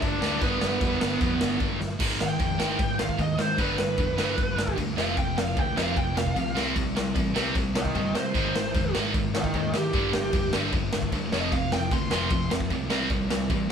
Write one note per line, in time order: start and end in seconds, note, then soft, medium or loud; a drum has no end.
0.00 0.18 G1 loud
0.00 0.19 G2 medium
0.00 0.20 G2 medium
0.00 0.20 D3 medium
0.00 0.21 D3 medium
0.00 0.20 G3 medium
0.00 0.22 G3 loud
0.00 0.39 D4 medium
0.00 0.42 D5 loud
0.00 kick loud
0.00 crash medium
0.21 0.37 D2 medium
0.21 1.78 G2 medium
0.21 1.80 D3 loud
0.21 1.80 G3 loud
0.21 snare medium
0.41 0.57 G1 loud
0.41 1.57 B3 medium
0.41 1.56 B4 medium
0.41 kick loud
0.41 crash medium
0.61 0.77 G1 medium
0.61 snare loud
0.80 0.96 F1 medium
0.80 1.39 G2 medium
0.80 1.39 D3 medium
0.80 1.38 G3 medium
0.80 kick loud
0.80 crash medium
1.01 1.16 G1 medium
1.01 snare loud
1.21 1.36 F2 medium
1.21 kick loud
1.21 crash medium
1.39 1.56 G1 medium
1.39 1.79 G2 medium
1.39 1.79 D3 medium
1.39 1.78 G3 medium
1.39 snare loud
1.60 1.76 G1 medium
1.60 kick loud
1.60 crash medium
1.80 1.96 G1 medium
1.80 snare medium
2.00 2.19 G#1 medium
2.00 2.19 G#2 medium
2.00 2.19 D#3 loud
2.00 2.19 G#3 loud
2.00 kick loud
2.00 crash loud
2.00 crash medium
2.20 2.39 G#1 medium
2.20 2.38 G#2 medium
2.20 2.38 D#3 medium
2.20 2.97 G5 medium
2.20 snare loud
2.40 2.59 F1 medium
2.40 2.58 G#2 medium
2.40 2.58 D#3 medium
2.40 kick loud
2.40 crash medium
2.59 2.79 G#1 medium
2.59 2.78 G#2 medium
2.59 2.78 D#3 medium
2.59 2.78 G#3 loud
2.59 snare loud
2.79 2.98 G#1 medium
2.79 2.97 G#2 medium
2.79 2.97 D#3 medium
2.79 kick loud
2.79 crash medium
2.99 3.18 G#1 medium
2.99 3.17 G#2 medium
2.99 3.17 D#3 medium
2.99 3.19 F5 medium
2.99 snare loud
3.09 kick medium
3.19 3.38 D#2 loud
3.19 3.36 G#2 medium
3.19 3.37 D#3 medium
3.19 3.39 D#5 medium
3.19 kick loud
3.19 crash medium
3.38 3.60 G#2 medium
3.38 3.57 G#2 medium
3.38 3.57 D#3 medium
3.38 3.57 G#3 medium
3.38 3.59 C5 medium
3.38 snare loud
3.58 3.78 G1 medium
3.58 3.77 G2 loud
3.58 3.77 D3 loud
3.58 3.78 G3 medium
3.58 4.75 B4 medium
3.58 kick loud
3.58 crash medium
3.78 3.97 G1 medium
3.78 3.96 G2 medium
3.78 3.97 D3 medium
3.78 snare loud
3.98 4.17 F1 medium
3.98 4.16 G2 medium
3.98 4.16 D3 medium
3.98 kick loud
3.98 crash medium
4.18 4.37 G1 medium
4.18 4.36 G2 medium
4.18 4.37 D3 medium
4.18 4.37 G3 medium
4.18 snare loud
4.38 4.57 G1 loud
4.38 4.56 G2 medium
4.38 4.56 D3 medium
4.38 kick loud
4.38 crash medium
4.57 4.77 G1 medium
4.57 4.75 G2 medium
4.57 4.76 D3 medium
4.57 snare loud
4.68 kick loud
4.77 4.97 D2 medium
4.77 4.95 G2 medium
4.77 4.95 D3 medium
4.77 kick medium
4.77 crash medium
4.97 5.17 F1 medium
4.97 5.16 F2 medium
4.97 5.16 C3 medium
4.97 5.17 F3 medium
4.97 5.17 F5 loud
4.97 snare loud
5.17 5.36 F1 loud
5.17 5.35 F2 medium
5.17 5.35 C3 medium
5.17 5.37 G5 medium
5.17 kick loud
5.17 crash medium
5.37 5.56 F1 medium
5.37 5.55 F2 medium
5.37 5.55 C3 medium
5.37 5.59 F5 loud
5.37 snare loud
5.57 5.76 D2 medium
5.57 5.75 F2 medium
5.57 5.75 C3 medium
5.57 5.77 G5 loud
5.57 kick loud
5.57 crash medium
5.76 5.96 F1 medium
5.76 5.95 F2 loud
5.76 5.95 C3 medium
5.76 5.96 F3 loud
5.76 5.97 F5 loud
5.76 snare loud
5.97 6.16 F1 medium
5.97 6.14 F2 medium
5.97 6.15 C3 medium
5.97 6.18 G5 medium
5.97 kick loud
5.97 crash medium
6.16 6.36 F1 medium
6.16 6.34 F2 medium
6.16 6.34 C3 medium
6.16 6.55 F5 loud
6.16 snare loud
6.26 kick medium
6.36 6.56 C2 loud
6.36 6.54 F2 medium
6.36 6.54 C3 medium
6.36 6.55 F3 medium
6.36 kick loud
6.36 crash medium
6.56 6.76 C2 medium
6.56 6.75 C3 medium
6.56 6.75 G3 medium
6.56 6.75 C4 medium
6.56 snare loud
6.76 6.95 C2 loud
6.76 6.94 C3 medium
6.76 6.94 G3 medium
6.76 kick loud
6.76 crash medium
6.96 7.15 C2 medium
6.96 7.14 C3 medium
6.96 7.14 G3 medium
6.96 snare loud
7.16 7.35 A1 medium
7.16 7.34 C3 medium
7.16 7.34 G3 medium
7.16 kick loud
7.16 crash medium
7.35 7.55 C2 medium
7.35 7.54 C3 medium
7.35 7.54 G3 loud
7.35 7.55 C4 loud
7.35 snare loud
7.55 7.75 C2 loud
7.55 7.73 C3 medium
7.55 7.74 G3 medium
7.55 kick loud
7.55 crash medium
7.74 7.95 C2 medium
7.74 7.93 C3 medium
7.74 7.93 G3 medium
7.74 7.95 D#5 loud
7.74 7.95 G5 medium
7.74 snare loud
7.85 kick loud
7.95 8.14 G1 medium
7.95 8.13 C3 medium
7.95 8.13 G3 medium
7.95 8.14 C4 medium
7.95 8.14 A#4 medium
7.95 8.15 D#5 loud
7.95 kick loud
7.95 crash medium
8.14 8.34 C3 medium
8.14 8.33 C3 medium
8.14 8.33 G3 medium
8.14 8.93 C5 medium
8.14 snare loud
8.34 8.54 G#1 medium
8.34 8.53 G#2 medium
8.34 8.53 D#3 medium
8.34 8.54 G#3 medium
8.34 kick loud
8.34 crash medium
8.54 8.74 G#1 medium
8.54 8.72 G#2 medium
8.54 8.72 D#3 medium
8.54 snare loud
8.74 8.94 F1 loud
8.74 8.92 G#2 medium
8.74 8.93 D#3 medium
8.74 kick loud
8.74 crash medium
8.94 9.14 G#1 medium
8.94 9.13 G#2 loud
8.94 9.13 D#3 loud
8.94 9.14 G#3 loud
8.94 snare loud
9.14 9.33 G#1 medium
9.14 9.32 G#2 medium
9.14 9.32 D#3 medium
9.14 kick loud
9.14 crash medium
9.34 9.53 G#1 medium
9.34 9.52 G#2 medium
9.34 9.52 D#3 medium
9.34 9.54 D#5 medium
9.34 9.54 G5 loud
9.34 snare loud
9.44 kick loud
9.54 9.73 D#2 loud
9.54 9.72 G#2 medium
9.54 9.72 D#3 loud
9.54 9.73 A#4 medium
9.54 9.74 D#5 loud
9.54 kick loud
9.54 crash medium
9.73 9.93 G#2 medium
9.73 9.92 G#2 medium
9.73 9.92 D#3 medium
9.73 9.92 G#3 medium
9.73 10.52 G4 loud
9.73 snare loud
9.93 10.13 G1 loud
9.93 10.12 G2 medium
9.93 10.12 D3 medium
9.93 10.13 G3 loud
9.93 kick loud
9.93 crash medium
10.13 10.32 G1 medium
10.13 10.31 G2 medium
10.13 10.32 D3 medium
10.13 snare loud
10.33 10.52 F1 loud
10.33 10.51 G2 medium
10.33 10.51 D3 medium
10.33 kick loud
10.33 crash medium
10.53 10.72 G1 medium
10.53 10.72 G2 medium
10.53 10.72 D3 loud
10.53 10.72 G3 medium
10.53 snare loud
10.72 10.92 G1 medium
10.72 10.91 G2 medium
10.72 10.91 D3 medium
10.72 kick loud
10.72 crash medium
10.93 11.12 G1 medium
10.93 11.11 G2 medium
10.93 11.11 D3 medium
10.93 snare loud
11.02 kick medium
11.12 11.32 D2 medium
11.12 11.31 G2 medium
11.12 11.31 D3 loud
11.12 kick loud
11.12 crash medium
11.32 11.51 F1 medium
11.32 11.51 F2 medium
11.32 11.52 C3 loud
11.32 11.52 F3 medium
11.32 11.52 D#5 loud
11.32 snare medium
11.52 11.71 F1 loud
11.52 11.70 F2 medium
11.52 11.71 C3 medium
11.52 11.72 F5 loud
11.52 kick loud
11.52 crash medium
11.71 11.91 F1 medium
11.71 11.90 F2 medium
11.71 11.90 C3 medium
11.71 11.92 G5 loud
11.71 snare loud
11.91 12.10 D2 medium
11.91 12.09 F2 medium
11.91 12.10 C3 medium
11.91 12.11 C6 medium
11.91 kick loud
11.91 crash medium
12.11 12.30 F1 medium
12.11 12.29 F2 medium
12.11 12.30 C3 loud
12.11 12.31 F3 loud
12.11 12.51 C6 loud
12.11 snare loud
12.30 12.50 F1 medium
12.30 12.49 F2 medium
12.30 12.49 C3 medium
12.30 kick loud
12.30 crash medium
12.50 12.70 F1 medium
12.50 12.69 F2 medium
12.50 12.69 C3 medium
12.50 snare loud
12.61 kick loud
12.70 12.90 C2 loud
12.70 12.89 F2 medium
12.70 12.89 C3 medium
12.70 12.90 F3 medium
12.70 kick loud
12.70 crash medium
12.90 13.10 C2 medium
12.90 13.09 C3 loud
12.90 13.09 G3 loud
12.90 13.10 C4 loud
12.90 snare loud
13.10 13.30 C2 loud
13.10 13.28 C3 medium
13.10 13.28 G3 medium
13.10 kick loud
13.10 crash medium
13.30 13.49 C2 loud
13.30 13.48 C3 medium
13.30 13.48 G3 medium
13.30 snare loud
13.50 13.69 A1 loud
13.50 13.68 C3 medium
13.50 13.68 G3 medium
13.50 kick loud
13.50 crash medium